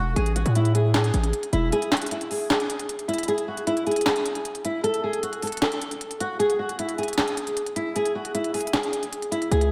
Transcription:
Already playing: E1 F#4
0.16 A1 G#4, closed hi-hat
0.26 closed hi-hat
0.36 F#4, closed hi-hat
0.46 A2, closed hi-hat
0.55 E4, closed hi-hat
0.65 closed hi-hat
0.75 G#4, closed hi-hat
0.94 G#4, snare, clap, closed hi-hat
1.04 closed hi-hat
1.14 A1, closed hi-hat
1.24 closed hi-hat
1.33 closed hi-hat
1.43 closed hi-hat
1.53 E1 E4, closed hi-hat
1.72 G#4, closed hi-hat
1.82 closed hi-hat
1.92 F#4, snare, clap, closed hi-hat
1.97 closed hi-hat
2.02 closed hi-hat
2.06 closed hi-hat
2.11 E4, closed hi-hat
2.21 closed hi-hat
2.31 G#4, open hi-hat
2.50 G#4, snare, clap, closed hi-hat
2.60 closed hi-hat
2.70 closed hi-hat
2.79 closed hi-hat
2.89 closed hi-hat
2.99 closed hi-hat
3.08 E4, closed hi-hat
3.14 closed hi-hat
3.18 closed hi-hat
3.23 closed hi-hat
3.28 G#4, closed hi-hat
3.38 closed hi-hat
3.48 F#4
3.57 closed hi-hat
3.67 E4, closed hi-hat
3.77 closed hi-hat
3.87 G#4, closed hi-hat
3.91 closed hi-hat
3.96 closed hi-hat
4.01 closed hi-hat
4.06 G#4, snare, clap
4.16 closed hi-hat
4.26 closed hi-hat
4.35 closed hi-hat
4.45 closed hi-hat
4.55 closed hi-hat
4.65 E4, closed hi-hat
4.84 A4, closed hi-hat
4.94 closed hi-hat
5.04 G#4
5.13 closed hi-hat
5.23 F#4, closed hi-hat
5.33 closed hi-hat
5.42 A4, closed hi-hat, open hi-hat
5.47 closed hi-hat
5.52 closed hi-hat
5.57 closed hi-hat
5.62 A4, snare, clap, closed hi-hat
5.72 closed hi-hat
5.82 closed hi-hat
5.91 closed hi-hat
6.01 closed hi-hat
6.11 closed hi-hat
6.20 F#4, closed hi-hat
6.39 G#4, closed hi-hat
6.50 closed hi-hat
6.59 F#4
6.69 closed hi-hat
6.79 E4, closed hi-hat
6.89 closed hi-hat
6.98 G#4, closed hi-hat
7.03 closed hi-hat
7.08 closed hi-hat
7.13 closed hi-hat
7.18 G#4, snare, clap, closed hi-hat
7.28 closed hi-hat
7.37 closed hi-hat
7.47 closed hi-hat
7.57 closed hi-hat
7.66 closed hi-hat
7.76 E4, closed hi-hat
7.96 G#4, closed hi-hat
8.05 closed hi-hat
8.15 F#4
8.25 closed hi-hat
8.34 E4, closed hi-hat
8.44 closed hi-hat
8.54 G#4, closed hi-hat, open hi-hat
8.61 closed hi-hat
8.67 closed hi-hat
8.73 G#4, snare, clap, closed hi-hat
8.83 closed hi-hat
8.93 closed hi-hat
9.03 closed hi-hat
9.13 closed hi-hat
9.22 closed hi-hat
9.31 E4, closed hi-hat
9.42 closed hi-hat
9.51 C#2 G#4, closed hi-hat
9.61 closed hi-hat

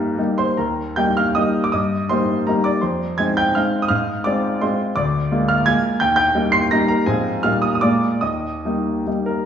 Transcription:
Already playing: G2 G3 A#3 D#4 G4 A#4
0.18 G3 A#3 D#4
0.38 C5 C6
0.57 D#2 A#4 A#5
0.96 G3 A#3 D#4 G5 G6
1.17 F5 F6
1.35 G3 A#3 D#4 D#5 D#6
1.64 D6
1.72 G2 D#5 D#6
2.09 G3 A#3 D#4 C5 C6
2.47 G3 A#3 D#4 A#4 A#5
2.64 D5 D6
2.81 F2 C5 C6
3.18 G#3 C4 D#4 G#5 G#6
3.37 G5 G6
3.55 G#3 C4 D#4 F5 F6
3.82 D#6
3.88 G#2 F5 F6
4.24 G#3 C4 F4 D5 D6
4.61 G#3 C4 F4 C5 C6
4.96 D2 D5 D6
5.32 G#3 A#3 F4
5.48 F5 F6
5.66 G#3 A#3 F4 G#5 G#6
6.00 D#2 G5 G6
6.16 G5 G6
6.35 G3 A#3 D#4
6.52 C6 C7
6.71 G3 A#3 D#4 A#5 A#6
6.88 A#4 A#5
7.06 G#2 F3 C4 F4 G#4 G#5
7.43 A#2 G3 A#3 D#4 F5 F6
7.62 D#6
7.75 D#6
7.81 A#2 G#3 A#3 F4 D5 D6
8.21 D#2 D#5 D#6
8.65 G3 A#3 D#4
9.07 G3 A#3 D#4
9.26 A#4

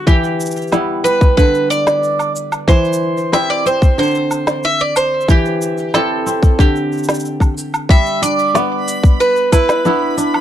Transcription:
Already playing: D3 G3 B3 E4
0.07 E3 G4, kick, shaker
0.24 shaker
0.40 shaker
0.46 shaker
0.51 shaker
0.56 shaker
0.62 shaker
0.67 shaker
0.72 G3 B3 E4, snare, shaker
1.04 G3 B4, shaker
1.21 kick, shaker
1.37 D3 B4, kick, shaker
1.55 shaker
1.70 D5, shaker
1.87 snare, shaker
2.04 shaker
2.19 low woodblock, shaker
2.36 shaker
2.52 low woodblock, shaker
2.68 E3 C5, kick, shaker
2.85 shaker
2.93 shaker
3.17 shaker
3.32 C4 E4 G4 E5, snare, shaker
3.50 D5
3.66 C4 C5, shaker
3.82 kick, shaker
3.98 D3 C5, shaker
4.03 shaker
4.07 shaker
4.11 shaker
4.15 shaker
4.31 low woodblock, shaker
4.47 snare, shaker
4.63 E5, shaker
4.80 D5, shaker
4.96 C5, low woodblock, shaker
5.21 shaker
5.28 E3 G4, kick, shaker
5.46 shaker
5.62 shaker
5.78 shaker
5.94 C4 E4 G4 A4, snare, shaker
6.26 C4, shaker
6.43 kick, shaker
6.59 D3 G4, kick, shaker
6.76 shaker
6.92 shaker
6.98 shaker
7.03 shaker
7.09 snare, shaker
7.14 shaker
7.20 shaker
7.25 shaker
7.40 kick, low woodblock, shaker
7.58 shaker
7.74 low woodblock, shaker
7.89 G3 E5 B5, kick, shaker
8.06 shaker
8.22 D4 D5, open hi-hat, shaker
8.39 shaker
8.54 B3, snare, shaker
8.88 open hi-hat, shaker
9.03 kick, shaker
9.20 B4, shaker
9.36 shaker
9.52 E4 B4, kick, open hi-hat, low woodblock, shaker
9.69 snare, shaker
9.85 B3 D4 E4, shaker
10.17 D4, open hi-hat, shaker
10.34 low woodblock

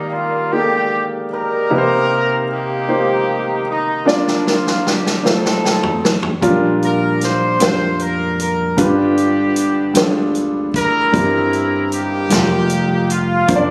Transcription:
Already playing: D#3 G3 A#3 D#4 G4 D5
0.14 F4
0.52 A#3 D#4 G4 G#4
0.60 A4
1.32 D#4 G4 A#4
1.70 C3 A#3 D#4 G4 B4
1.78 C5
2.52 A#3 D#4 G4
2.88 A#3 D#4 G4 C5
3.71 D#4
4.05 F3 A#3 D4 F4 D5, snare
4.10 D4
4.27 snare
4.47 F4, snare
4.67 snare
4.87 G4, snare
5.06 snare
5.23 A3 D#4 F4 C5, snare
5.28 C4 D#4 A4
5.45 snare
5.65 snare
5.83 floor tom
6.05 snare
6.23 floor tom
6.41 A#1 A#2 G3 C#4 F4 A#4, kick, closed hi-hat
6.49 D4
6.82 A#4, closed hi-hat
7.21 C5, snare, closed hi-hat
7.60 F2 G3 D4 F4 A#4 C5, snare, closed hi-hat
7.99 A#4, closed hi-hat
8.40 A#4, closed hi-hat
8.77 G1 G2 G3 B3 D4 F4 B4, kick, closed hi-hat
8.81 G4
9.18 closed hi-hat
9.56 closed hi-hat
9.94 D2 G3 D4 F4 G#4, snare, closed hi-hat
10.02 A4
10.35 closed hi-hat
10.74 E4 A#4, kick, closed hi-hat
11.12 G1 G2 G3 C4 E4 A#4, kick, closed hi-hat
11.53 closed hi-hat
11.92 A#3 D#4 G4, closed hi-hat
12.29 F1 G3 D#4 F4 A4, snare, closed hi-hat
12.37 A#4
12.70 closed hi-hat
13.10 F4, closed hi-hat
13.48 F1 A#3 D4 F4 C5, kick, closed hi-hat
13.52 F3 D5

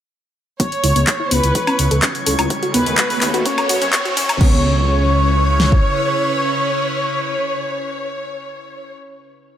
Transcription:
0.60 B3 E4 C#5 C#6, kick, closed hi-hat, riser
0.72 closed hi-hat
0.84 C#2 E4, open hi-hat
0.96 C#2 B3, closed hi-hat
1.07 kick, clap, closed hi-hat
1.20 E4
1.31 C#2 B3 B4, open hi-hat
1.44 C#2, closed hi-hat
1.55 A4, kick, closed hi-hat
1.67 C#4, closed hi-hat, high woodblock
1.79 C#2, open hi-hat
1.91 C#2 A4, closed hi-hat
2.02 C#4, kick, clap, closed hi-hat
2.15 closed hi-hat
2.26 C#2 A4, open hi-hat
2.39 C#2 C#4, closed hi-hat, high woodblock
2.50 C#4, kick, closed hi-hat
2.63 F#4, closed hi-hat
2.74 D#2 B3 B4, open hi-hat
2.86 D#2, closed hi-hat
2.98 F#4, kick, clap, closed hi-hat
3.10 B3, open hi-hat
3.21 D#2, clap, open hi-hat
3.34 D#2 F#4, closed hi-hat
3.45 C#4 C#5, kick, closed hi-hat
3.58 closed hi-hat, high woodblock
3.69 F#2 F#4, open hi-hat
3.82 F#2 C#4, closed hi-hat
3.93 kick, clap, closed hi-hat
4.05 F#4, closed hi-hat
4.17 F#2 C#4, open hi-hat
4.29 F#2, closed hi-hat, high woodblock
4.41 C#2 C#3 B3 C#4 E4 B4 C#5, kick, crash
5.60 snare
5.72 kick

